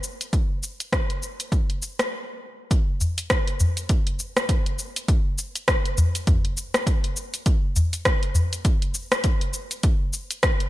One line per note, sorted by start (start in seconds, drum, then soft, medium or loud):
0.03 shaker medium
0.21 closed hi-hat soft
0.21 shaker soft
0.33 kick medium
0.33 closed hi-hat soft
0.33 shaker soft
0.63 shaker medium
0.80 closed hi-hat soft
0.80 shaker soft
0.93 kick medium
0.93 cross-stick medium
0.93 closed hi-hat soft
0.93 shaker soft
1.10 closed hi-hat soft
1.23 shaker medium
1.40 closed hi-hat soft
1.40 shaker soft
1.52 kick medium
1.52 closed hi-hat soft
1.52 shaker soft
1.70 closed hi-hat soft
1.82 shaker medium
1.99 cross-stick medium
1.99 closed hi-hat soft
1.99 shaker soft
2.71 kick loud
2.71 closed hi-hat medium
2.71 shaker soft
3.01 udu medium
3.01 shaker medium
3.18 closed hi-hat soft
3.18 shaker soft
3.30 kick loud
3.30 cross-stick medium
3.30 closed hi-hat medium
3.30 shaker soft
3.47 closed hi-hat soft
3.60 udu medium
3.60 shaker medium
3.77 closed hi-hat soft
3.77 shaker soft
3.89 kick medium
3.89 closed hi-hat medium
3.89 shaker soft
4.07 closed hi-hat soft
4.19 shaker medium
4.37 cross-stick medium
4.37 closed hi-hat soft
4.37 shaker soft
4.49 kick loud
4.49 closed hi-hat medium
4.49 shaker soft
4.66 closed hi-hat soft
4.79 shaker medium
4.96 closed hi-hat soft
4.96 shaker soft
5.08 kick loud
5.08 closed hi-hat medium
5.08 shaker soft
5.38 shaker medium
5.55 closed hi-hat soft
5.55 shaker soft
5.68 kick loud
5.68 cross-stick medium
5.68 closed hi-hat medium
5.68 shaker soft
5.85 closed hi-hat soft
5.98 udu loud
5.98 shaker medium
6.15 closed hi-hat soft
6.15 shaker soft
6.27 kick loud
6.27 closed hi-hat medium
6.27 udu medium
6.27 shaker soft
6.45 closed hi-hat soft
6.57 shaker medium
6.74 cross-stick medium
6.74 closed hi-hat soft
6.74 shaker soft
6.87 kick loud
6.87 closed hi-hat medium
6.87 shaker soft
7.04 closed hi-hat soft
7.17 shaker medium
7.34 closed hi-hat soft
7.34 shaker soft
7.46 kick loud
7.46 closed hi-hat medium
7.46 shaker soft
7.76 udu medium
7.76 shaker medium
7.93 closed hi-hat soft
7.93 shaker soft
8.05 kick loud
8.05 cross-stick medium
8.05 closed hi-hat medium
8.05 shaker soft
8.23 closed hi-hat soft
8.35 udu loud
8.35 shaker medium
8.53 closed hi-hat soft
8.53 shaker soft
8.65 kick loud
8.65 closed hi-hat medium
8.65 shaker soft
8.82 closed hi-hat soft
8.94 shaker medium
9.12 cross-stick medium
9.12 closed hi-hat soft
9.12 shaker soft
9.24 kick loud
9.24 closed hi-hat medium
9.24 shaker soft
9.41 closed hi-hat soft
9.54 shaker medium
9.71 closed hi-hat soft
9.71 shaker soft
9.83 kick loud
9.83 closed hi-hat medium
9.83 shaker soft
10.13 shaker medium
10.31 closed hi-hat soft
10.31 shaker soft
10.43 kick loud
10.43 cross-stick medium
10.43 closed hi-hat medium
10.43 shaker soft
10.60 closed hi-hat soft